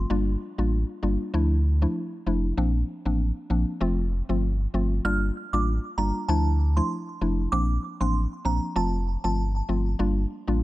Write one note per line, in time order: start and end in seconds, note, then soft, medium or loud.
0.10 0.36 G1 loud
0.10 0.31 G3 loud
0.10 0.31 A#3 medium
0.10 0.31 D4 medium
0.10 0.31 F4 loud
0.58 0.85 A1 loud
0.58 0.76 G3 medium
0.58 0.76 A#3 medium
0.58 0.77 D4 medium
0.58 0.77 F4 medium
1.03 1.18 G1 loud
1.03 1.23 G3 medium
1.03 1.24 A#3 medium
1.03 1.24 D4 medium
1.03 1.24 F4 medium
1.34 1.86 D2 loud
1.34 1.54 F3 loud
1.34 1.55 A3 medium
1.34 1.55 D4 medium
1.34 1.55 E4 loud
1.82 2.00 F3 medium
1.82 2.00 A3 medium
1.82 2.00 D4 medium
1.82 2.00 E4 medium
2.26 2.53 F1 loud
2.26 2.47 F3 medium
2.26 2.47 A3 medium
2.26 2.47 D4 medium
2.26 2.48 E4 medium
2.57 2.84 A#1 loud
2.57 2.78 F3 loud
2.57 2.78 A#3 medium
2.57 2.78 C4 medium
2.57 2.79 D4 loud
3.05 3.32 A1 medium
3.05 3.24 F3 medium
3.05 3.24 A#3 medium
3.05 3.24 C4 medium
3.05 3.24 D4 medium
3.50 3.65 A#1 medium
3.50 3.71 F3 medium
3.50 3.71 A#3 medium
3.50 3.71 C4 medium
3.50 3.71 D4 medium
3.81 4.22 F1 loud
3.81 4.02 F3 loud
3.81 4.02 A3 medium
3.81 4.02 C4 medium
3.81 4.02 F4 loud
4.29 4.67 G1 medium
4.29 4.47 F3 medium
4.29 4.47 A3 medium
4.29 4.48 C4 medium
4.29 4.48 F4 medium
4.74 5.00 G1 medium
4.74 4.95 F3 medium
4.74 4.95 A3 medium
4.74 4.95 C4 medium
4.74 4.95 F4 medium
5.05 5.31 G1 loud
5.05 5.26 G3 loud
5.05 5.26 A#3 medium
5.05 5.26 D4 medium
5.05 5.26 F4 loud
5.05 5.16 F6 loud
5.53 5.79 A1 medium
5.53 5.71 G3 medium
5.53 5.71 A#3 medium
5.53 5.71 D4 medium
5.53 5.72 F4 medium
5.53 5.62 D6 medium
5.98 6.12 G1 loud
5.98 6.19 G3 medium
5.98 6.19 A#3 medium
5.98 6.19 D4 medium
5.98 6.19 F4 medium
5.98 6.08 A#5 medium
6.28 6.81 D2 loud
6.28 6.49 F3 loud
6.28 6.50 A3 medium
6.28 6.50 D4 medium
6.28 6.50 E4 loud
6.28 6.39 A5 medium
6.77 6.95 F3 medium
6.77 6.95 A3 medium
6.77 6.95 D4 medium
6.77 6.95 E4 medium
6.77 6.85 C6 medium
7.21 7.48 F1 medium
7.21 7.42 F3 medium
7.21 7.42 A3 medium
7.21 7.42 D4 medium
7.21 7.42 E4 medium
7.52 7.79 A#1 loud
7.52 7.73 F3 loud
7.52 7.73 A#3 medium
7.52 7.73 C4 medium
7.52 7.73 D4 loud
7.52 7.63 D6 loud
8.00 8.27 A1 medium
8.00 8.19 F3 medium
8.00 8.19 A#3 medium
8.00 8.19 C4 medium
8.00 8.19 D4 medium
8.00 8.09 C6 medium
8.45 8.60 A#1 medium
8.45 8.66 F3 medium
8.45 8.66 A#3 medium
8.45 8.66 C4 medium
8.45 8.66 D4 medium
8.45 8.56 A#5 medium
8.76 9.17 F1 loud
8.76 8.97 F3 loud
8.76 8.97 A3 medium
8.76 8.97 C4 medium
8.76 8.97 F4 loud
8.76 8.87 A5 medium
9.24 9.62 G1 loud
9.24 9.42 F3 medium
9.24 9.42 A3 medium
9.24 9.42 C4 medium
9.24 9.42 F4 medium
9.24 9.33 A5 medium
9.69 9.95 G1 medium
9.69 9.90 F3 medium
9.69 9.90 A3 medium
9.69 9.90 C4 medium
9.69 9.90 F4 medium
9.99 10.26 G1 loud
9.99 10.20 G3 medium
9.99 10.20 A#3 medium
9.99 10.20 D4 medium
9.99 10.21 F4 loud
10.47 10.63 A1 medium
10.47 10.63 G3 medium
10.47 10.63 A#3 medium
10.47 10.63 D4 medium
10.47 10.63 F4 medium